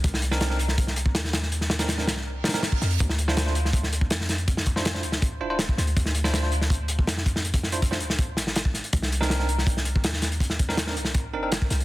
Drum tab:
HH |x---x---x---x---x---x---x---x---|x---x-x-x---x-------xxx-x---x-x-|x---x---x---x---x---x---x---x-x-|x---x---x---x---x-------x---x-x-|
SD |--o---o-o-o---o---o-----o-o-o-o-|--o-o-o-o-o-o-o-----ooo-o---o---|--o---o-o-o---o---o-----o-o-o---|--o---o-o-o---o---------o---o---|
BD |o---------------o-----o---------|--------------------------o-----|o---------------o-----o---------|o---o-----------o---------o-----|

HH |x---x---x---x---x---x---x---x---|x-x---x-x---x---x---x---x---x-x-|x---x---x---x---x---x---x---x-x-|x---x---x---x---x-------x---x-x-|
SD |--o---o-o-o---o---------o-o---o-|----o-----o---o-----o-o-o---o---|--o---o-o-o---o---o-----o-o-o---|--o---o-o-o---o---------o---o---|
BD |o---------------o-----o-----o---|--o-----o-------o---------o-----|o---------------o-----o---------|o---o-----------o---------o-----|